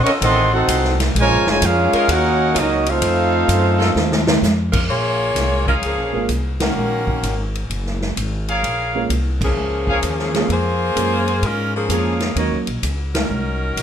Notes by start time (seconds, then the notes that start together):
0.03 F#3 C#4 D#4 F4 A#4 D#5 F#5 C#6, ride
0.08 A4
0.21 A1 D#3 A3 C4 A4 D#5 F#5 C6, kick, ride
0.52 C4 D#4 F#4 A4 C5 F#5
0.68 C2 F#3 D#4 F4 C5, kick, hi-hat pedal, ride
0.84 snare
1.00 snare, ride
1.15 A#1 C#3 F3 G#3, kick, ride
1.20 F4 A#4 C#5 G#5
1.31 G#1
1.47 F1 C#3 F3 G#3 A#4 G#5, snare
1.51 F4 C#5
1.62 F2 G#3 C#4 F4, kick, hi-hat pedal, ride
1.66 C#4 G#4 A#4 F5
1.93 F#3 C#4 D#4 A#4, muted upright bass stroke, ride
2.08 D#2 A#3 C#4 D#4 F#4 C#5 F#5, kick, ride
2.12 A#4
2.54 C#2 F#3 A#3 C#4 D#4 F4, kick, hi-hat pedal, ride
2.58 C#4 F#4 A#4 D#5
2.86 A3 C4 F4 A4 F5, ride
2.91 D#4 C5
3.02 F2, kick, ride
3.48 F#2, kick, hi-hat pedal, ride
3.78 F#3 D#4 F4 A4, snare
3.95 D#2, snare
4.12 snare
4.27 snare
4.42 F2, snare, hi-hat pedal
4.72 G#3 C#4 F4 A#4, kick, crash
4.89 A#1 A#3 F4 G#4 C#5, kick
5.35 C2, kick, snare, hi-hat pedal, ride
5.66 G#3 C#4 F4 G#4 A#4 C#5 F5, kick
5.82 C#2 F3 A#3 C#4 G#4, kick, ride
5.98 A#1
6.13 G#1 G#3 A#3 C#4 F4 A#4
6.29 C2, kick, hi-hat pedal, ride
6.60 D#3 A#3 C#4 F#4, snare, ride
6.76 A#1
7.07 kick
7.23 G#1, kick, hi-hat pedal, ride
7.55 ride
7.70 F#1, kick, ride
7.86 snare
8.01 snare
8.16 G#1, kick, hi-hat pedal, ride
8.48 G#4 A#4 C#5 F5, ride
8.63 A#1, kick, ride
8.95 G#3 A#3 C#4 F4 A#4
9.09 C2, kick, hi-hat pedal, ride
9.41 F3 A#3 C#4 G#4, kick, crash
9.57 C#2
9.87 G#4 A#4 C#5 F5, kick
10.03 D#2, kick, hi-hat pedal, ride
10.19 snare
10.34 G#3 A#3 C#4 F4 G#4, snare, ride
10.49 F2 A#3 F4 G#4 C5, kick, ride
10.96 F#2 G#3 A#3 C#4 F4 A#4, kick, hi-hat pedal, ride
11.28 ride
11.42 G#2 G#3 C#4 F4 A#4, kick, ride
11.75 F3 A#3 C#4 G#4
11.89 F2 G#3 A#3 C#4 F4 G#4 A#4 C#5 F5, kick, hi-hat pedal, ride
12.20 snare, ride
12.36 D#2 F#3 A#3 C#4 D#4 F#4 A#4 C#5 D#5, kick, ride
12.52 C#2
12.67 A#1, ride
12.83 C#2, kick, hi-hat pedal, ride
13.14 F#3 C#4 D#4 A#4, snare, ride
13.30 C2
13.76 B1, kick, hi-hat pedal, ride